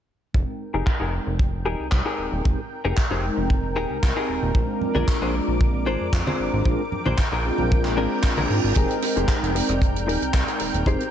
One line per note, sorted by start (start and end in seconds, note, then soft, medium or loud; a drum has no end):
0.33 0.45 F1 medium
0.33 1.10 G#3 medium
0.33 1.10 C4 medium
0.33 1.10 D#4 medium
0.33 8.72 A#4 medium
0.33 1.11 A#4 medium
0.33 4.51 G5 medium
0.33 1.10 G5 medium
0.33 kick loud
0.74 0.84 F1 medium
0.74 0.87 D#4 medium
0.74 0.87 G4 medium
0.74 0.87 G#4 medium
0.74 0.87 A#4 loud
0.87 kick loud
0.87 clap loud
1.00 1.20 F1 medium
1.00 1.13 D#4 medium
1.00 1.13 G4 medium
1.00 1.13 G#4 medium
1.00 1.13 A#4 medium
1.12 2.41 G#3 medium
1.12 2.42 C4 medium
1.12 2.42 D#4 medium
1.12 2.42 D5 medium
1.12 2.42 G5 medium
1.27 1.67 F1 medium
1.27 muted clean electric guitar stroke soft
1.39 kick loud
1.66 1.76 D#1 medium
1.66 1.86 D#4 medium
1.66 1.86 G4 medium
1.66 1.86 G#4 medium
1.66 1.86 A#4 loud
1.80 1.90 C2 soft
1.92 2.02 C2 medium
1.92 kick medium
1.92 clap loud
2.05 2.45 D#4 medium
2.05 2.45 G4 medium
2.05 2.45 G#4 medium
2.05 2.45 A#4 medium
2.19 2.30 D#1 soft
2.32 2.42 D#1 medium
2.44 2.55 F1 medium
2.44 2.60 G#3 loud
2.44 2.60 C4 medium
2.44 2.60 G4 medium
2.44 2.60 A#4 loud
2.44 kick loud
2.85 2.94 F1 medium
2.85 2.97 D#4 loud
2.85 2.97 G4 medium
2.85 2.97 G#4 medium
2.85 2.97 A#4 loud
2.97 kick loud
2.97 clap loud
3.11 3.30 F1 medium
3.11 3.24 D#4 medium
3.11 3.24 G4 medium
3.11 3.24 G#4 medium
3.11 3.24 C5 medium
3.23 4.52 G#3 medium
3.23 4.52 C4 medium
3.23 4.52 D#4 medium
3.23 4.53 A#4 loud
3.23 4.53 G5 medium
3.37 3.78 F1 medium
3.37 muted clean electric guitar stroke soft
3.50 kick loud
3.76 3.87 D#1 medium
3.76 3.96 D#4 medium
3.76 3.96 G4 medium
3.76 3.96 G#4 medium
3.76 3.97 A#4 loud
3.90 4.00 C2 soft
4.03 4.13 C2 medium
4.03 kick loud
4.03 clap loud
4.16 4.55 D#4 medium
4.16 4.55 G4 medium
4.16 4.55 G#4 medium
4.16 4.56 A#4 medium
4.29 4.40 D#1 soft
4.43 4.52 D#1 medium
4.54 4.65 A#1 loud
4.54 5.31 G#3 medium
4.54 5.31 C4 medium
4.54 5.31 D4 medium
4.54 5.31 F4 medium
4.54 5.32 A#4 medium
4.54 8.72 D6 medium
4.54 kick loud
4.81 low conga medium
4.95 5.05 A#1 medium
4.95 5.08 D4 loud
4.95 5.08 G#4 medium
4.95 5.08 A#4 loud
4.95 high conga medium
5.08 kick loud
5.08 clap loud
5.22 5.41 A#1 medium
5.22 5.34 D4 medium
5.22 5.34 G#4 medium
5.22 5.35 C5 medium
5.33 6.62 G#3 medium
5.33 6.63 C4 medium
5.33 6.63 D4 medium
5.33 6.63 F4 medium
5.33 6.63 D5 medium
5.48 5.89 A#1 medium
5.48 muted clean electric guitar stroke soft
5.61 kick loud
5.61 high conga medium
5.86 5.97 G#1 medium
5.86 6.07 D4 loud
5.86 6.07 G#4 medium
5.86 6.07 C5 loud
6.01 6.11 F2 soft
6.13 6.23 F2 medium
6.13 kick loud
6.13 clap loud
6.27 6.66 D4 medium
6.27 6.66 G#4 medium
6.27 6.66 C5 medium
6.27 high conga medium
6.40 6.51 G#1 soft
6.53 6.63 G#1 medium
6.65 6.76 A#1 loud
6.65 6.81 G#3 loud
6.65 6.81 C4 medium
6.65 6.81 D4 loud
6.65 6.81 F4 medium
6.65 6.82 A#4 loud
6.65 8.74 G5 medium
6.65 kick loud
6.92 low conga medium
7.06 7.15 A#1 loud
7.06 7.18 D4 medium
7.06 7.19 G#4 medium
7.06 7.19 C5 loud
7.06 high conga medium
7.18 kick loud
7.18 clap loud
7.32 7.51 A#1 loud
7.32 7.45 D4 medium
7.32 7.45 G#4 medium
7.32 7.45 A#4 medium
7.43 8.73 G#3 medium
7.43 8.73 C4 medium
7.43 8.73 D4 medium
7.43 8.74 F4 medium
7.43 8.74 A#4 medium
7.58 7.99 A#1 medium
7.58 muted clean electric guitar stroke soft
7.58 low conga medium
7.71 kick loud
7.71 reverse cymbal medium
7.71 high conga medium
7.85 clap soft
7.97 8.08 G#1 medium
7.97 8.17 D4 loud
7.97 8.18 G#4 medium
7.97 8.18 A#4 loud
8.23 kick loud
8.23 clap loud
8.37 8.47 A#1 loud
8.37 8.76 D4 medium
8.37 8.76 G#4 medium
8.37 8.76 A#4 medium
8.37 high conga medium
8.50 8.60 G#2 medium
8.64 8.73 G#1 medium
8.75 8.87 F1 medium
8.75 9.52 G#3 medium
8.75 9.52 C4 medium
8.75 9.52 D#4 medium
8.75 8.96 D#4 loud
8.75 8.97 G4 medium
8.75 8.97 G#4 loud
8.75 11.11 A#4 medium
8.75 9.53 A#4 loud
8.75 8.97 A#4 loud
8.75 9.52 G5 medium
8.75 11.11 G5 medium
8.75 kick loud
8.75 closed hi-hat medium
8.90 closed hi-hat medium
9.02 cross-stick medium
9.02 open hi-hat loud
9.16 9.26 F1 medium
9.16 9.36 D#4 medium
9.16 9.36 G4 medium
9.16 9.36 G#4 medium
9.16 9.36 C5 medium
9.16 closed hi-hat medium
9.28 kick loud
9.28 clap loud
9.28 closed hi-hat medium
9.43 9.62 F1 loud
9.43 closed hi-hat medium
9.54 10.83 G#3 medium
9.54 10.83 C4 medium
9.54 10.84 D#4 medium
9.54 10.84 D5 medium
9.54 10.84 G5 medium
9.54 muted clean electric guitar stroke medium
9.54 open hi-hat loud
9.69 10.09 F1 medium
9.69 muted clean electric guitar stroke soft
9.69 cross-stick medium
9.69 closed hi-hat medium
9.82 kick loud
9.82 closed hi-hat medium
9.96 closed hi-hat medium
10.08 10.18 D#1 medium
10.08 10.22 D#4 loud
10.08 10.22 G4 medium
10.08 10.22 G#4 medium
10.08 10.22 A#4 loud
10.08 open hi-hat medium
10.22 10.32 C2 soft
10.22 closed hi-hat medium
10.34 10.44 C2 medium
10.34 muted clean electric guitar stroke medium
10.34 kick loud
10.34 clap loud
10.34 closed hi-hat medium
10.48 muted clean electric guitar stroke soft
10.48 closed hi-hat medium
10.59 10.72 D#1 soft
10.59 muted clean electric guitar stroke soft
10.59 open hi-hat medium
10.74 10.84 D#1 medium
10.74 closed hi-hat medium
10.86 10.97 F1 loud
10.86 11.02 G#3 loud
10.86 11.02 C4 loud
10.86 11.07 D#4 loud
10.86 11.02 G4 medium
10.86 11.07 G4 loud
10.86 11.07 G#4 medium
10.86 11.03 A#4 loud
10.86 11.07 C5 loud
10.86 kick loud
10.86 closed hi-hat medium
11.00 closed hi-hat soft